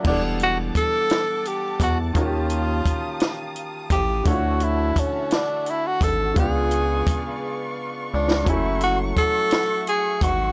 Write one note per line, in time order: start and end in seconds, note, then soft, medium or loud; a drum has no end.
0.03 0.71 E1 loud
0.03 2.10 E3 medium
0.03 2.11 B3 medium
0.03 2.12 D4 medium
0.03 2.13 A4 medium
0.03 2.13 F#5 medium
0.03 4.22 A5 medium
0.03 2.13 D6 medium
0.03 kick loud
0.03 crash medium
0.07 2.13 G3 medium
0.07 0.22 D4 medium
0.07 2.13 A4 medium
0.07 2.12 F#5 medium
0.40 0.58 F#4 loud
0.40 closed hi-hat soft
0.75 0.83 E2 soft
0.75 1.49 A4 loud
0.75 kick medium
0.75 closed hi-hat medium
1.10 snare loud
1.10 closed hi-hat medium
1.45 1.81 G4 loud
1.45 closed hi-hat soft
1.80 2.12 E2 medium
1.80 1.98 F#4 medium
1.80 kick loud
1.80 closed hi-hat medium
2.13 2.82 D#2 loud
2.13 4.21 D#3 medium
2.13 4.21 A#3 medium
2.13 4.22 C#4 medium
2.13 4.23 F5 medium
2.13 4.23 D#6 medium
2.13 kick loud
2.13 closed hi-hat medium
2.18 4.23 F4 medium
2.18 3.53 F4 medium
2.18 2.24 F#4 medium
2.26 4.27 G4 medium
2.50 closed hi-hat soft
2.86 2.93 A1 soft
2.86 kick medium
2.86 closed hi-hat medium
3.20 snare loud
3.20 closed hi-hat medium
3.56 closed hi-hat soft
3.90 4.22 A1 loud
3.90 4.29 G4 loud
3.90 kick loud
3.90 closed hi-hat loud
4.24 4.92 D2 loud
4.24 6.31 D3 medium
4.24 6.32 A3 medium
4.24 4.65 F#4 medium
4.24 6.33 C#5 medium
4.24 6.34 E5 medium
4.24 6.34 F#5 medium
4.24 6.34 A5 medium
4.24 kick loud
4.24 closed hi-hat medium
4.29 6.34 E4 medium
4.29 4.35 F4 medium
4.37 6.38 F#4 medium
4.60 5.01 E4 medium
4.60 closed hi-hat medium
4.96 5.04 G#1 soft
4.96 5.33 C#4 medium
4.96 kick medium
4.96 closed hi-hat medium
5.31 5.71 D4 loud
5.31 snare loud
5.31 closed hi-hat medium
5.66 5.88 E4 medium
5.66 closed hi-hat soft
5.87 6.05 F#4 loud
6.01 6.33 G#1 loud
6.01 6.37 A4 loud
6.01 kick loud
6.01 closed hi-hat medium
6.34 7.03 C#2 loud
6.34 8.42 C#3 medium
6.34 8.42 G#3 medium
6.34 8.43 B3 medium
6.34 8.45 B4 medium
6.34 8.45 D5 medium
6.34 8.45 F5 medium
6.34 10.52 C#6 medium
6.34 kick loud
6.34 closed hi-hat medium
6.39 8.44 D4 medium
6.39 8.45 F4 medium
6.39 7.74 G#4 loud
6.71 closed hi-hat soft
7.07 7.15 C#2 soft
7.07 kick loud
7.07 closed hi-hat medium
8.14 8.44 C#2 loud
8.14 8.51 D4 loud
8.31 snare loud
8.44 9.13 F#1 loud
8.44 10.52 F#3 medium
8.44 10.52 A3 medium
8.44 10.52 C#4 medium
8.44 10.52 E4 medium
8.44 10.52 E5 medium
8.44 10.52 F#5 medium
8.44 kick loud
8.44 closed hi-hat medium
8.49 10.52 A3 medium
8.49 8.83 E4 medium
8.49 10.52 G#5 medium
8.81 8.99 F#4 loud
8.81 closed hi-hat medium
9.17 9.24 G#1 soft
9.17 9.84 A4 loud
9.17 kick medium
9.17 closed hi-hat medium
9.51 snare loud
9.51 closed hi-hat medium
9.87 10.25 G#4 loud
9.87 closed hi-hat medium
10.21 10.52 G#1 loud
10.21 10.52 F#4 loud
10.21 kick loud
10.21 closed hi-hat medium